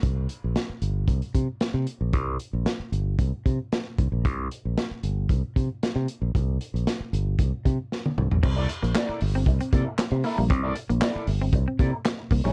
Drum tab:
CC |----------------|----------------|----------------|----------------|
HH |x-x-x-x-xxx-x-x-|x-x-x-x-x-x-x-x-|x-x-x-x-x-x-x-x-|x-xxx-x-x-x-----|
CP |----------------|----------------|----------------|----------------|
SD |----o-------o---|----o-------o---|----o-------o---|----o-------o---|
T1 |----------------|----------------|----------------|-------------o--|
T2 |----------------|----------------|----------------|--------------o-|
FT |----------------|----------------|----------------|---------------o|
BD |o-------o-o-----|o-------o-o---o-|o-------o-o-----|o-------o-o-----|

CC |x---------------|----------------|
HH |--xxx-o-xxx-x-o-|x-xxx-o-x-x-x-o-|
CP |----x-------x---|----x-------x---|
SD |----o-------o---|----o-------o---|
T1 |----------------|----------------|
T2 |----------------|----------------|
FT |----------------|----------------|
BD |o-------o-o-----|o-------o-o---o-|